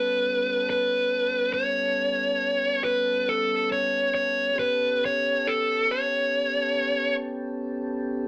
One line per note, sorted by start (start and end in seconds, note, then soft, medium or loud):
0.00 4.53 G3 medium
0.00 4.54 B3 medium
0.00 4.54 C#4 medium
0.00 4.53 A4 medium
0.00 0.69 B4 loud
0.70 1.53 B4 medium
1.54 2.84 C#5 medium
2.84 3.28 B4 medium
3.29 3.68 A4 medium
3.72 4.13 C#5 medium
4.15 4.58 C#5 medium
4.55 8.28 B3 medium
4.55 8.28 C#4 medium
4.55 8.28 G4 medium
4.55 8.28 A4 medium
4.59 5.03 B4 medium
5.05 5.47 C#5 medium
5.47 5.90 A4 medium
5.91 7.15 C#5 medium